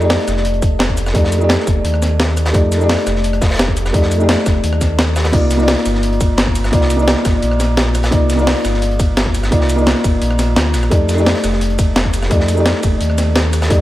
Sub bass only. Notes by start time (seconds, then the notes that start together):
Already playing: F2
0.27 F1
0.62 F1
1.15 F2
1.67 F1
1.84 D#2
2.54 F2
3.06 F1
3.41 F1
3.94 F2
4.46 F1
4.63 D#2
5.33 C2
5.86 G1
6.21 G1
6.73 C2
7.25 G1
7.42 A#1
8.12 C2
8.64 G1
8.99 G1
9.52 C2
10.04 G1
10.22 A#1
10.56 D2
10.74 A#1
10.91 F2
11.44 F1
11.79 F1
12.31 F2
12.83 F1
13.01 D#2
13.71 F2